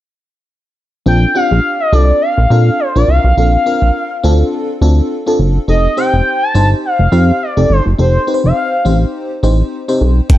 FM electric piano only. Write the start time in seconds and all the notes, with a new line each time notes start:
1.06 C4 D4 F4 A4
1.35 C4 D4 F4 G4
1.92 C4 D4 F4 A4
2.50 C4 D4 F4 A4
2.96 C4 D4 F4 A#4
3.37 C4 D4 F4 A4
3.66 C4 D4 F4 A#4
4.24 C4 D4 F4 A4
4.82 C4 D4 F4 A4
5.26 C4 D4 F4 A4
5.68 C4 D#4 G4 A4
5.97 C4 D#4 G4 C5
6.54 C4 D#4 G4 C5
7.12 C4 D#4 G4 C5
7.57 C4 D#4 G4 A4
7.98 C4 D#4 G4 A4
8.27 C4 D#4 G4 B4
8.34 C5
8.85 C4 D#4 G4 C5
9.43 C4 D#4 G4 C5
9.88 C4 D#4 G4 C5
10.29 C4 D4 F4 A4